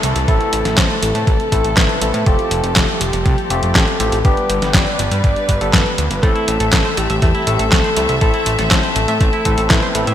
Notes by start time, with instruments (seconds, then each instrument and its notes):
Already playing: string section C3 E3 A3 E4 A4, soft synth lead A4, downlifter
0.03 analog synth bass C2, tine electric piano A3 C4 E4 A4, closed hi-hat
0.16 analog synth bass C2, closed hi-hat
0.28 analog synth bass A1, tine electric piano A3 C4 E4 A4, soft synth lead A4, kick, closed hi-hat
0.41 closed hi-hat
0.53 analog synth bass A1, closed hi-hat
0.65 analog synth bass A1, snare, closed hi-hat
0.77 analog synth bass A1, soft synth lead C5, kick, snare, clap, closed hi-hat
0.90 closed hi-hat
1.02 analog synth bass A1, soft synth lead A4, closed hi-hat
1.15 analog synth bass A2, closed hi-hat
1.27 analog synth bass A1, kick, closed hi-hat
1.40 closed hi-hat
1.52 analog synth bass A1, tine electric piano A3 C4 E4 A4, kick, closed hi-hat
1.64 analog synth bass A1, closed hi-hat
1.76 analog synth bass A1, soft synth lead B4, kick, snare, clap, closed hi-hat
1.89 closed hi-hat
2.01 analog synth bass A1, tine electric piano A3 C4 E4 A4, closed hi-hat
2.14 analog synth bass A2, closed hi-hat
2.26 analog synth bass F1, string section F3 C4 G4, tine electric piano A3 C4 F4 G4, soft synth lead A4, kick, closed hi-hat
2.39 closed hi-hat
2.51 analog synth bass F1, closed hi-hat
2.63 analog synth bass F1, closed hi-hat
2.76 analog synth bass F1, kick, snare, clap, closed hi-hat
2.89 closed hi-hat
3.01 analog synth bass F1, soft synth lead G4, closed hi-hat
3.13 analog synth bass F1, closed hi-hat
3.26 analog synth bass C2, kick, closed hi-hat
3.38 closed hi-hat
3.50 analog synth bass F1, tine electric piano A3 C4 F4 G4, closed hi-hat
3.63 analog synth bass F1, closed hi-hat
3.75 analog synth bass A1, soft synth lead A4, kick, snare, clap, closed hi-hat
3.88 closed hi-hat
4.00 analog synth bass A1, tine electric piano A3 C4 F4 G4, closed hi-hat
4.12 analog synth bass A1, closed hi-hat
4.24 analog synth bass G1, string section D3 G3 B3 B4, tine electric piano G3 B3 D4 G4, soft synth lead B4, kick, closed hi-hat
4.37 closed hi-hat
4.50 analog synth bass G1, closed hi-hat
4.62 analog synth bass G1, snare, closed hi-hat
4.74 analog synth bass G1, soft synth lead D5, kick, snare, clap, closed hi-hat
4.87 closed hi-hat
4.98 analog synth bass G1, soft synth lead D5, closed hi-hat
5.11 analog synth bass G2, closed hi-hat
5.24 analog synth bass G1, kick, closed hi-hat
5.36 closed hi-hat
5.49 analog synth bass G1, kick, closed hi-hat
5.61 analog synth bass G1, tine electric piano G3 B3 D4 A4, closed hi-hat
5.73 analog synth bass G1, soft synth lead B4, kick, snare, clap, closed hi-hat
5.86 closed hi-hat
5.98 analog synth bass D2, closed hi-hat
6.11 analog synth bass G1, closed hi-hat
6.23 analog synth bass A1, string section E3 A3 C4 A4 E5, clean electric guitar A3, tine electric piano A3 C4 E4 A4, soft synth lead A4, kick, closed hi-hat
6.35 clean electric guitar E4, closed hi-hat
6.48 analog synth bass A1, clean electric guitar A3, closed hi-hat
6.60 analog synth bass A1, clean electric guitar A4, closed hi-hat
6.73 analog synth bass A1, clean electric guitar A3, kick, snare, clap, closed hi-hat
6.85 clean electric guitar C5, closed hi-hat
6.97 analog synth bass A1, clean electric guitar A3, soft synth lead G4, closed hi-hat
7.10 analog synth bass A1, clean electric guitar E5, closed hi-hat
7.22 analog synth bass E2, clean electric guitar A3, kick, closed hi-hat
7.35 clean electric guitar E4, closed hi-hat
7.47 analog synth bass A1, clean electric guitar A3, tine electric piano A3 C4 E4 A4, closed hi-hat
7.59 analog synth bass A1, clean electric guitar A4, closed hi-hat
7.71 analog synth bass C2, clean electric guitar A3, soft synth lead A4, kick, snare, clap, closed hi-hat
7.84 clean electric guitar C5, closed hi-hat
7.96 analog synth bass C2, clean electric guitar A3, tine electric piano A3 C4 E4 A4, closed hi-hat
8.09 analog synth bass C2, clean electric guitar E5, closed hi-hat
8.21 analog synth bass A1, clean electric guitar A3, tine electric piano A3 C4 E4 A4, soft synth lead A4, kick, closed hi-hat
8.34 clean electric guitar E4, closed hi-hat
8.46 analog synth bass A1, clean electric guitar A3, closed hi-hat
8.59 analog synth bass A1, clean electric guitar A4, snare, closed hi-hat
8.71 analog synth bass A1, clean electric guitar A3, soft synth lead C5, kick, snare, clap, closed hi-hat
8.83 clean electric guitar C5, closed hi-hat
8.96 analog synth bass A1, clean electric guitar A3, soft synth lead A4, closed hi-hat
9.08 analog synth bass A2, clean electric guitar E5, closed hi-hat
9.21 analog synth bass A1, clean electric guitar A3, kick, closed hi-hat
9.33 clean electric guitar E4, closed hi-hat
9.45 analog synth bass A1, tine electric piano A3 C4 E4 A4, clean electric guitar A3, kick, closed hi-hat
9.58 analog synth bass A1, clean electric guitar A4, closed hi-hat
9.70 analog synth bass A1, clean electric guitar A3, soft synth lead B4, kick, snare, clap, closed hi-hat
9.83 clean electric guitar C5, closed hi-hat
9.95 analog synth bass A1, tine electric piano A3 C4 E4 A4, clean electric guitar A3, closed hi-hat
10.07 analog synth bass A2, clean electric guitar E5, closed hi-hat